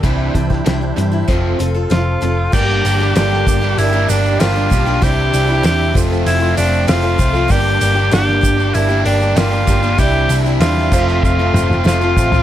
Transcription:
0.03 C2 C3 E3 G3 D4 E4 G4 C5, kick, closed hi-hat
0.35 C2 C3 E3 G3 D4 E4 G4, kick, closed hi-hat
0.50 D4 E4 G4, kick, snare
0.66 C2 C3 E3 G3 D4 E4 G4, snare, closed hi-hat
0.81 D4 E4 G4
0.96 G2 C3 E3 G3 D4 E4 G4, closed hi-hat
1.12 D4 E4 G4
1.28 F1 F2 C3 F3 C4 F4 A4, kick, closed hi-hat
1.59 F1 F2 C3 F3 C4 F4 A4, closed hi-hat
1.75 C4 F4 A4
1.90 F1 F2 C3 F3 C4 F4 A4, snare, closed hi-hat
2.21 F1 F2 C3 F3 C4 F4 A4, closed hi-hat
2.53 G1 G2 D3 G3 A#3 D4 G4 A#4, kick, crash, shaker
2.84 G1 G3 A#3 D4 G4, open hi-hat, shaker
2.99 G3 A#3 D4 G4
3.15 G1 G2 D3 G3 A#3 D4 G4 A4, snare, open hi-hat, shaker
3.33 snare
3.46 G1 G3 A#3 D4 G4, muted overdriven electric guitar stroke, kick, open hi-hat, shaker
3.62 G3 A#3 D4 G4, shaker
3.78 G1 D4 E4 G4 A#4, open hi-hat, shaker
3.93 G3 A#3 D4 G4
4.09 G1 G3 A#3 D4 G4, open hi-hat, shaker
4.25 shaker
4.40 G1 G2 D3 G3 A#3 D4 F4 G4 C5, snare, open hi-hat, shaker
4.55 G3 A#3 D4 G4
4.71 B1 G3 A#3 D4 G4, kick, open hi-hat, shaker
4.86 G3 A#3 D4 G4
5.02 C2 C3 E3 G3 C4 D4 E4 G4 C5, kick, open hi-hat, shaker
5.33 C2 E3 G3 C4 E4, open hi-hat, shaker
5.47 G3 C4 D4 E4 G4
5.64 E2 C3 E3 G3 C4 D4 E4 G4 C5, snare, open hi-hat, shaker
5.95 F1 F2 C3 F3 A3 C4 F4 A4 C5, kick, open hi-hat, shaker
6.10 F3 A3 C4 F4 A4, shaker
6.26 F1 E4, open hi-hat, shaker
6.40 A3 C4 F4 A4
6.44 F3
6.57 F1 F3 A3 C4 D4 F4, open hi-hat, shaker
6.74 shaker
6.87 F1 F2 C3 F3 A3 C4 F4 A4 C5, snare, open hi-hat, shaker
7.02 F3 A3 C4 F4 A4
7.19 C2 F3 A3 C4 F4 A4, kick, open hi-hat, shaker
7.33 F3 A3 C4 F4 A4, shaker
7.50 G1 G2 D3 G3 A#3 D4 G4 A#4 D5, kick, open hi-hat, shaker
7.80 G1 G3 A#3 D4 G4, open hi-hat, shaker
7.96 G3 A#3 D4 G4
8.11 G1 G2 D3 G3 A#3 D4 G4 A#4 F5, snare, open hi-hat, shaker
8.29 snare
8.41 G1 G3 A#3 D4 G4, muted overdriven electric guitar stroke, kick, open hi-hat, shaker
8.58 G3 A#3 D4 G4, shaker
8.74 G1 E4 G4 A#4 D5, open hi-hat, shaker
8.88 G3 A#3 D4 G4
9.04 G1 G3 A#3 D4 G4, open hi-hat
9.21 G3 A#3 D4 G4, shaker
9.35 G1 G2 D3 G3 A#3 D4 F4 G4 A#4 D5, snare, open hi-hat, shaker
9.52 G3 A#3 D4 G4
9.67 G1 G3 A#3 D4 G4, kick, open hi-hat, shaker
9.83 G3 A#3 D4 G4, shaker
9.98 C2 C3 E3 G3 C4 D4 E4 G4 C5 D5 E5, kick, open hi-hat, shaker
10.29 C2 E3 G3 C4 E4, open hi-hat, shaker
10.44 G3 C4 D4 E4 G4, shaker
10.60 E2 C3 E3 G3 C4 D4 E4 F4 G4 C5 E5, snare, open hi-hat, shaker
10.77 snare
10.92 F1 F2 C3 F3 A3 C4 F4 A4 C5, kick, crash, shaker
11.07 F3 A3 C4 F4, shaker
11.23 F1 F4, kick, shaker
11.38 F3 A3 C4 F4 A4
11.53 F1 F3 A3 C4 F4, mid tom, shaker
11.70 mid tom, shaker
11.85 F1 F2 C3 F3 A3 C4 F4 A4 C5, snare, shaker
12.01 F3 A3 C4 F4 A4
12.16 A1 F3 A3 C4 F4 A4, kick, shaker
12.32 F3 A3 C4 F4 A4, floor tom, shaker

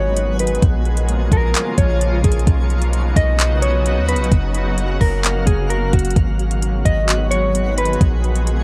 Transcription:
Already playing: G#1 D#3 F#3 G#3 B3 F#4 G#4 C#5 F#5
0.17 closed hi-hat
0.39 B4, closed hi-hat
0.47 closed hi-hat
0.55 closed hi-hat
0.62 A#1 C#3 F3 A#3 F4 G#4 C#5, kick, closed hi-hat
0.85 closed hi-hat
0.97 closed hi-hat
1.09 closed hi-hat
1.32 A#1 A#4, kick, closed hi-hat
1.55 clap, closed hi-hat
1.78 A#1 C#5, kick, closed hi-hat
2.01 closed hi-hat
2.24 A#1 G#4, kick, closed hi-hat
2.32 closed hi-hat
2.39 closed hi-hat
2.47 B1 C#3 F#3 B3 D#4 F#4, kick, closed hi-hat
2.70 closed hi-hat
2.82 closed hi-hat
2.93 closed hi-hat
3.16 B1 D#5, kick, closed hi-hat
3.39 clap, closed hi-hat
3.62 C#5, closed hi-hat
3.86 closed hi-hat
3.97 D#2
4.09 B4, closed hi-hat
4.14 B1, closed hi-hat
4.24 closed hi-hat
4.32 F#1 A#3 F#4 F5, kick, closed hi-hat
4.54 closed hi-hat
4.78 closed hi-hat
5.01 F#1 A#4, kick, open hi-hat
5.24 clap, closed hi-hat
5.46 F#1 G#4, kick, closed hi-hat
5.70 A#4, closed hi-hat
5.93 F#1 F#4, kick, closed hi-hat
5.99 closed hi-hat
6.05 closed hi-hat
6.11 closed hi-hat
6.16 G#1 D#3 F#3 G#3 B3 F#4 G#4 F#5, kick, closed hi-hat
6.39 closed hi-hat
6.51 closed hi-hat
6.62 closed hi-hat
6.85 G#1 D#5, kick, closed hi-hat
7.09 clap, closed hi-hat
7.31 C#5, closed hi-hat
7.55 closed hi-hat
7.78 B4, closed hi-hat
7.85 closed hi-hat
7.93 closed hi-hat
8.01 A#1 C#3 F3 A#3 F4 C#5, kick, closed hi-hat
8.24 closed hi-hat
8.36 closed hi-hat
8.47 closed hi-hat

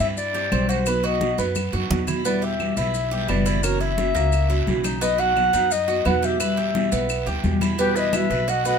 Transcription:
0.00 G2 G3 C4 E4 E5, high conga, short guiro, maracas
0.16 D5, muted nylon-string guitar stroke, high conga, long guiro, maracas
0.33 G3 C4 E4 G4, high conga, maracas
0.52 B1 E3 G3 C4 E4, high conga, short guiro, claves, maracas
0.69 F#4 C5, short guiro, maracas
0.86 B2 F#3 B3 D#4 F#4 B4, high conga, long guiro, claves, maracas
1.03 F#4 D#5, high conga, maracas
1.20 B2 F#3 B3 D#4 F#4, high conga, short guiro, maracas
1.38 F#2 B3 D#4 F#4, high conga, short guiro, maracas
1.55 muted nylon-string guitar stroke, high conga, long guiro, claves, maracas
1.72 F#2 B3 D#4 F#4, maracas
1.90 E2 B2 F#3 B3 D#4 F#4, low conga, short guiro, maracas
2.07 E4, low conga, short guiro, claves, maracas
2.25 B2 E3 G3 B3 E4 D5, high conga, long guiro, maracas
2.42 G4 E5, high conga, maracas
2.59 B2 E3 G3 B3 E4, high conga, short guiro, claves, maracas
2.76 B1 G3 B3 E4 E5, high conga, short guiro, maracas
2.94 muted nylon-string guitar stroke, high conga, long guiro, maracas
3.11 G3 B3 E4 G4, high conga, maracas
3.28 F#1 B2 E3 G3 B3 E4 D5, high conga, short guiro, claves, maracas
3.46 E4, short guiro, maracas
3.62 C#3 E3 A#3 C#4 F#4 A#4 C#5, high conga, long guiro, claves, maracas
3.80 E4 E5, high conga, maracas
3.97 C#3 E3 A#3 C#4 F#4, high conga, short guiro, maracas
4.15 C#2 A#3 C#4, high conga, short guiro, maracas
4.32 muted nylon-string guitar stroke, high conga, long guiro, claves, maracas
4.49 A#3 C#4 E4 F#4, high conga, maracas
4.66 B1 C#3 E3 A#3 C#4 F#4, high conga, short guiro, maracas
4.84 D#4, high conga, short guiro, claves, maracas
5.01 B2 F#3 B3 D#4 F#4 D#5, high conga, long guiro, maracas
5.18 F#4 F#5, high conga, maracas
5.35 B2 F#3 B3 D#4 F#4, high conga, short guiro, claves, maracas
5.53 F#2 B3 D#4 F#4, high conga, short guiro, maracas
5.70 D#5, muted nylon-string guitar stroke, high conga, long guiro, maracas
5.88 B3 D#4 F#4, high conga, maracas
6.05 E2 B2 F#3 B3 D#4 F#4 F#5, high conga, short guiro, claves, maracas
6.23 G4 E5, high conga, short guiro, maracas
6.40 B2 E3 G3 B3 E4 B4, high conga, long guiro, claves, maracas
6.57 G4, high conga, maracas
6.74 B2 E3 G3 B3 E4, high conga, short guiro, maracas
6.92 B1 G3 B3, high conga, short guiro, maracas
7.09 muted nylon-string guitar stroke, high conga, long guiro, claves, maracas
7.26 D2 G3 B3 E4 G4, high conga, maracas
7.43 E2 B2 E3 G3 B3 E4, high conga, short guiro, maracas
7.61 E4, high conga, short guiro, claves, maracas
7.78 B2 E3 G3 B3 F#4 G4 B4, high conga, long guiro, maracas
7.96 E4 B4 D#5, high conga, maracas
8.12 B2 E3 G3 B3 F#4 B4 E5, high conga, short guiro, claves, maracas
8.30 B1 G3 B3 B4, high conga, short guiro, maracas
8.47 F#4 D#5 F#5, muted nylon-string guitar stroke, high conga, long guiro, maracas
8.64 A3 B3 F#4 B4 D#5 F#5, high conga, maracas

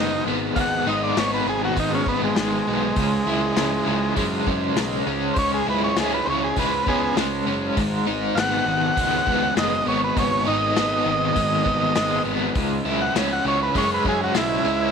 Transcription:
Already playing: F#1 G#2 D#3 G#3 B3 D#4
0.26 G#1 B3
0.56 G#1 G#2 F5, kick, open hi-hat
0.60 F#5
0.87 G#1 D#4 D#5
1.03 D5
1.17 G#1 B3 C#5, snare, open hi-hat
1.34 B4
1.46 G#1 D#3 G#4
1.65 F#4
1.77 G#1 G#3 D#4, kick, open hi-hat
1.94 C#4
2.06 G#1 B3, kick
2.24 G#3
2.35 G#1 G3 G#3, snare, open hi-hat
2.39 G#3
2.67 B1 B3
2.96 C#2 C#3, kick, open hi-hat
3.26 C#2 E4
3.56 C#2 C#4, snare, open hi-hat
3.86 C#2 C#3
4.16 F#2 G#3, kick, open hi-hat
4.47 F#2 C#4, kick
4.76 B1 G#3, snare, open hi-hat
5.07 C#2 C#4
5.34 C#2 C#3 C5, kick, open hi-hat
5.39 C#5
5.54 G#4
5.67 C#2 E4 B4
5.84 C#5
5.96 C#2 C#4 G#4, snare, open hi-hat
6.14 B4
6.25 C#2 C#3 C5
6.30 C#5
6.44 G#4
6.56 C#2 G#3 B4, kick, open hi-hat
6.87 C#2 B3 C#4 G#4, kick
7.16 C#2 G#3, snare, open hi-hat
7.46 F#1 C#4
7.77 G#1 G#2 G#3 B4 D#5 G#5 D#6, kick, open hi-hat
8.06 G#1 D#4
8.35 G#1 B3 F5, snare, open hi-hat
8.40 F#5
8.66 G#1 D#3
8.96 C#2 G#3, kick, open hi-hat
9.26 C#2 B3, kick
9.56 F#1 G#3 D#5, snare, open hi-hat
9.86 G#1 B3 C#5
10.04 B4
10.16 G#1 G#2 C#5, kick, open hi-hat
10.46 G#1 D#4 D#5
10.76 G#1 B3, snare, open hi-hat
11.06 G#1 D#3
11.36 G#1 G#3, kick, open hi-hat
11.65 G#1 B3, kick
11.95 G#1 G#3, snare, open hi-hat
12.25 G#1 B3
12.55 C#2 C#3 C#5 E5 G#5 E6, kick, open hi-hat
12.85 C#2 E4
13.02 F#5
13.15 C#2 C#4, snare, open hi-hat
13.33 F#5
13.45 C#2 C#3 C#5
13.63 B4
13.75 F#2 G#3 C#5, kick, open hi-hat
13.94 B4
14.05 F#2 C#4 G#4, kick
14.24 F#4
14.35 B1 G#3 E4, snare, open hi-hat
14.65 C#2 C#4

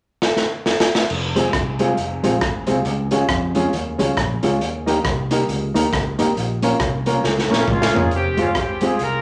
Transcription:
0.22 snare
0.37 snare
0.66 snare
0.80 snare
0.95 snare
1.10 F1, crash
1.35 G#3 C4 F4 G#4, closed hi-hat
1.53 C2, kick, cross-stick, closed hi-hat
1.79 G#3 C4 F4 G#4, closed hi-hat
1.97 F1, closed hi-hat
2.23 A#1 G#3 C4 F4 G#4, closed hi-hat
2.41 G#1, kick, cross-stick, closed hi-hat
2.67 C2 G#3 C4 F4 G#4, closed hi-hat
2.85 C#2, closed hi-hat
3.11 G#3 C#4 F4 G#4, closed hi-hat
3.29 F2, kick, cross-stick, closed hi-hat
3.55 G#3 C#4 F4 G#4, closed hi-hat
3.73 D#2, closed hi-hat
3.98 C#2 G#3 C#4 F4 G#4, closed hi-hat
4.17 A#1, kick, cross-stick, closed hi-hat
4.43 C#2 G#3 C#4 F4 G#4, closed hi-hat
4.61 D#2, closed hi-hat
4.86 A#3 D#4 G4 A#4, closed hi-hat
5.05 C2, kick, cross-stick, closed hi-hat
5.31 A#3 D#4 G4 A#4, closed hi-hat
5.49 C#2, closed hi-hat
5.74 D#2 A#3 D#4 G4 A#4, closed hi-hat
5.93 C#2, kick, cross-stick, closed hi-hat
6.18 G#1 A#3 D#4 G4 A#4, closed hi-hat
6.36 A#1, closed hi-hat
6.62 A#3 C#4 F4 A#4, closed hi-hat
6.80 C2, kick, cross-stick, closed hi-hat
7.06 A#3 C#4 F4 A#4, closed hi-hat
7.24 C#2, snare
7.39 snare
7.50 A#1 A#3 C#4 F4 A#4, snare
7.68 C#2 C#4 F4, kick, mid tom
7.82 snare
7.94 G1 A#3 C#4 F4 G#4 A#4, floor tom
8.11 F1 C4 G4, closed hi-hat
8.37 G1 G#3 C4 C#4 F4 G#4, closed hi-hat
8.55 G#1 C4 G4, kick, cross-stick, closed hi-hat
8.81 G#3 C4 F4 G#4, closed hi-hat
8.99 C2 F4 A#4, closed hi-hat

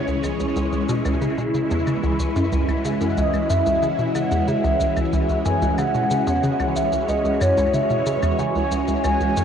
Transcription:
Already playing: E3 G#3 C#4 G#4 C#5
0.08 C#2, shaker
0.24 C#2, claves, shaker
0.40 C#2, shaker
0.56 C#2, shaker
0.73 C#2, shaker
0.77 E4
0.89 B2, shaker
1.05 C#2, claves, shaker
1.22 C#3, shaker
1.38 B2, shaker
1.54 C#3, shaker
1.71 E2, shaker
1.87 C#3, claves, shaker
2.03 C#2, shaker
2.19 C#2, shaker
2.36 F#2 F#4, shaker
2.52 C#2, shaker
2.68 C#2, claves, shaker
2.85 C#3, shaker
3.01 F#2, shaker
3.17 C#2 D#5, shaker
3.34 C#2, claves, shaker
3.50 F#2 E5, shaker
3.66 C#2, shaker
3.83 C#3, shaker
3.99 B2, shaker
4.15 C#3 F#5, claves, shaker
4.31 E2, shaker
4.48 C#3 E5, shaker
4.64 C#2, shaker
4.80 C#2, shaker
4.97 C#2, claves, shaker
5.13 C#2, shaker
5.29 C#2, shaker
5.45 F#2 G#5, shaker
5.62 C#2, shaker
5.78 C#3 F#5, claves, shaker
5.94 B2, shaker
5.99 C#5
6.11 C#3, shaker
6.27 E2, shaker
6.43 C#3, shaker
6.60 C#2, claves, shaker
6.76 C#2 E5, shaker
6.92 C#2, shaker
7.08 C#2 D#5, shaker
7.25 C#2, shaker
7.41 F#2 C#5, claves, shaker
7.57 C#2, shaker
7.74 C#3 E5, shaker
7.90 B2, shaker
8.06 C#3, shaker
8.23 E2, claves, shaker
8.39 C#3 G#5, shaker
8.55 C#2, shaker
8.71 C#2, shaker
8.88 C#2, shaker
9.04 C#2 G#5, claves, shaker
9.20 C#2, shaker
9.37 F#2, shaker

